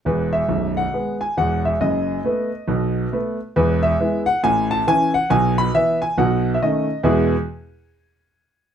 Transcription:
X:1
M:4/4
L:1/16
Q:"Swing" 1/4=137
K:E
V:1 name="Grand piano"
B2 e4 f4 g2 f2 e2 | d12- d2 z2 | B2 e4 f2 g2 a2 g2 f2 | g2 b2 e2 g2 f3 e d4 |
[E,,B,,G,B,EGg]2 z12 z2 |]
V:2 name="Grand piano" clef=bass
[E,,,E,,]4 [B,,,,B,,,]4 [G,B,B]4 [E,,,E,,]4 | [F,,,F,,]4 [A,B,B]4 [B,,,B,,]4 [A,B,B]4 | [E,,,E,,]4 [G,B,E]4 [A,,,A,,]4 [E,CE]4 | [B,,,B,,]4 [E,B,E]4 [B,,,B,,]4 [D,A,C]4 |
z16 |]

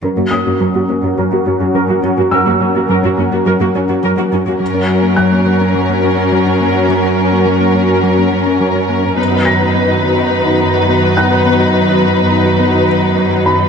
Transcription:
X:1
M:4/4
L:1/16
Q:1/4=105
K:F#mix
V:1 name="Felt piano"
z2 d'12 z2 | e'12 z4 | z4 f'12 | z16 |
z2 a'12 [ff']2- | [ff']8- [ff']2 z4 b2 |]
V:2 name="Violin section"
z16 | z16 | [CA]16- | [CA]16 |
[DB]16- | [DB]16 |]
V:3 name="Analog synth pad"
[F,CFA]16- | [F,CFA]16 | [F,CFA]16- | [F,CFA]16 |
[D,B,FB]16- | [D,B,FB]16 |]
V:4 name="Synth pluck"
F, A, A, C F, C A, C F, F C C F, F C F | F, A, A, C F, C A, C F, F C C F, F C F | F, C z A, F, A, A, C F, A, C C F, C A, F | F, C z A, F, A, A, C F, A, C C F, C A, F |
B, F z D B, D D F B, D F F B, F D B | B, F z D B, D D F B, D F F B, F D B |]
V:5 name="Viola section"
[CA] [A,F] [F,C] [A,F] [CA] [A,F] [F,C] [A,F] [CA] [A,F] [F,C] [A,F] [CA] [A,F] [F,C] [A,F] | [CA] [A,F] [F,C] [A,F] [CA] [A,F] [F,C] [A,F] [CA] [A,F] [F,C] [A,F] [CA] [A,F] [F,C] [A,F] | z16 | z16 |
z16 | z16 |]
V:6 name="Cello section" clef=bass
F,, F,, F,, F,, F,, F,, F,, F,, F,, F,, F,, F,, F,, F,, F,, F,, | F,, F,, F,, F,, F,, F,, F,, F,, F,, F,, F,, F,, F,, F,, F,, F,, | F,,16- | F,,16 |
F,,16- | F,,16 |]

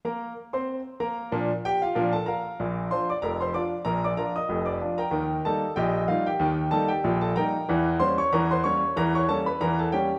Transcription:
X:1
M:2/4
L:1/16
Q:"Swing 16ths" 1/4=94
K:Bb
V:1 name="Grand piano"
[B,Bb]3 [Ccc']3 [B,Bb]2- | [B,Bb]2 [Gg] [Ff]2 [Aa] [Bfb]2- | [Bfb]2 [cc'] [dd'] [Bb] [cc'] [dd']2 | [Bb] [dd'] [Bb] [ee']2 [dd']2 [Bgb]- |
[Bgb]2 [Aa]2 [Geg]2 [Ff] [Gg]- | [Gg]2 [Aa] [Gg]2 [Aa] [Bgb]2- | [Bgb]2 [cc'] [^c^c'] [Bb] [=c=c'] [^c^c']2 | [Bb] [^c^c'] [Aa] [_c_c'] [Bb] [Aa] [Gg]2 |]
V:2 name="Grand piano" clef=bass
z8 | [B,,F,DB]2 z2 [B,,F,DB]2 z2 | [B,,,B,,]2 [F,DF]2 [F,,,F,,]2 [F,DF]2 | [B,,,B,,]2 [F,DF]2 [F,,,F,,]2 [F,DF]2 |
[E,,E,]2 [G,B,E]2 [B,,,B,,]2 [G,B,E]2 | [E,,E,]2 [G,B,E]2 [B,,,B,,]2 [G,B,E]2 | [=E,,=E,]2 [G,B,^C]2 [E,,E,]2 [G,B,C]2 | [=E,,=E,]2 [G,B,^C]2 [E,,E,]2 [G,B,C]2 |]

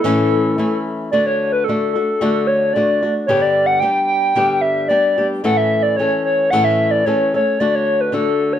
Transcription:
X:1
M:2/4
L:1/16
Q:1/4=111
K:A
V:1 name="Soft synth lead"
A6 z2 | [K:D] d c2 B A2 A2- | A2 c2 d3 z | c d2 f g2 g2- |
g2 e2 d3 z | f e2 d c2 c2 | f e2 d c2 c2 | d c2 B A3 c |]
V:2 name="Nylon-string guitar"
[A,,E,A,CE]4 [E,A,CE]4 | [K:D] [D,A,DF]4 [D,A,DF]2 [A,DF]2 | [D,A,DF]4 [D,A,DF]2 [A,DF]2 | [G,,D,G,B,DG]4 [G,B,DG]4 |
[G,,D,G,B,DG]4 [G,B,DG]2 [G,B,DG]2 | [A,,E,A,CA]4 [E,A,CA]4 | [A,,E,A,CA]4 [E,A,CA]2 [A,CA]2 | [D,A,DF]4 [D,A,DF]4 |]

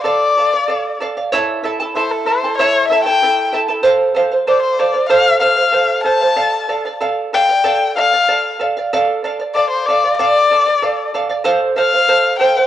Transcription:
X:1
M:2/4
L:1/16
Q:1/4=95
K:Dm
V:1 name="Charango"
[Adf]2 [Adf] [df] [Adf]2 [Adf] [df] | [EA^cea]2 [EAea] [EAa] [EAea]2 [EAea] [EAa] | [EA^cea]2 [EAea] [EAa] [EAea]2 [EAea] [EAa] | [Acf]2 [Acf] [cf] [Acf]2 [Acf] [cf] |
[Acf]2 [Acf] [cf] [Acf]2 [Acf] [cf] | [Adf]2 [Adf] [df] [Adf]2 [Adf] [df] | [Adf]2 [Adf] [df] [Adf]2 [Adf] [df] | [Adf]2 [Adf] [df] [Adf]2 [Adf] [df] |
[Adf]2 [Adf] [df] [Adf]2 [Adf] [df] | [Acf]2 [Acf] [cf] [Acf]2 [Acf] [cf] |]
V:2 name="Erhu"
d6 z2 | z4 c A c2 | ^c2 e g3 z2 | z4 d c d2 |
f2 f4 a2- | a4 z2 g2- | g2 f4 z2 | z4 d c d2 |
d6 z2 | z2 f4 g2 |]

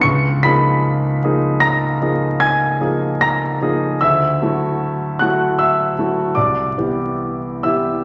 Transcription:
X:1
M:5/4
L:1/8
Q:1/4=75
K:Db
V:1 name="Grand piano"
[d'd''] [_c'_c'']3 [bb']2 [aa']2 [bb']2 | [=e=e']3 [^f^f'] [ee']2 [=d=d']3 [ee'] |]
V:2 name="Grand piano"
D,, [F,B,EA]2 [F,B,EA]2 [F,B,EA]2 [F,B,EA]2 [F,B,EA] | =D,, [^F,=A,=E^F]2 [F,A,EF]2 [F,A,EF] C,, [=E,=B,E=G]2 [E,B,EG] |]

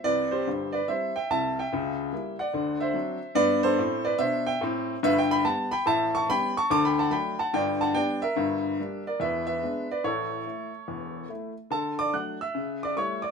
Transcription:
X:1
M:4/4
L:1/8
Q:"Swing" 1/4=144
K:G
V:1 name="Upright piano"
[Bd] [Gc]2 [Bd] [ce] [eg] [ea] [eg]- | [eg]3 [df]2 [ce]3 | [Bd] [Ac]2 [Bd] [ce] [eg] z2 | [K:D] (3[Be] [eg] [gb] [fa] [gb] [ea] [ac'] [gb] [ac'] |
(3[ad'] [gb] [fa] [gb] [fa] [dg] [fa] [dg] [_Be]- | [_Be]3 [Bd] [=Be] [Be]2 [Bd] | [Ac]6 z2 | [Aa] [dd'] [ff'] [ee']2 [dd'] [cc'] [dd'] |]
V:2 name="Upright piano" clef=bass
[C,,C,]2 [G,,,G,,]2 [G,CE]2 [C,,C,]2 | [^C,,^C,]2 [G,^A,E]2 [D,,D,]2 [F,=CD]2 | [G,,B,]2 [A,,C]2 [B,,D]2 [A,,C]2 | [K:D] [G,,,G,,]2 [G,B,]2 [A,,,A,,]2 [G,B,C]2 |
[D,,D,]2 [F,A,D]2 [G,,,G,,]2 [G,B,D]2 | [G,,,G,,]2 [G,_B,D]2 [E,,,E,,]2 [^G,=B,D]2 | [A,,,A,,]2 [A,E]2 [E,,,E,,]2 [A,E]2 | D,2 [F,A,D]2 C,2 [G,A,E]2 |]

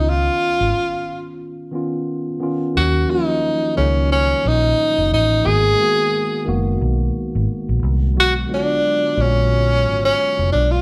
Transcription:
X:1
M:4/4
L:1/16
Q:"Swing 16ths" 1/4=89
K:D#m
V:1 name="Tenor saxophone"
E8 z8 | F2 D4 C2 C2 D4 D2 | G6 z8 z2 | F2 =D4 C4- C C3 D E |]
V:2 name="Tine electric piano"
[D,B,CE]4 z6 [D,B,CE]4 [D,B,CE]2 | [D,F,A,C]2 [D,E,F,A,CE]4 [D,F,A,CD]6 z4 | [D,G,A,B,F]2 [D,G,A,B,F]4 [D,G,A,B,F]6 z4 | [=D,F,G,B,F]2 [D,F,G,B,EF]4 [D,F,G,B,EF]6 z4 |]
V:3 name="Fingered electric bass" clef=bass
C,,2 z G,,, z12 | D,,2 z4 C,,4 A,,,2 z F,,, =A,,,2 | G,,,2 z4 F,,,2 B,,,2 z G,,, z A,,, ^B,,,2 | B,,,2 z4 A,,,4 G,,,2 z E,,, B,,,2 |]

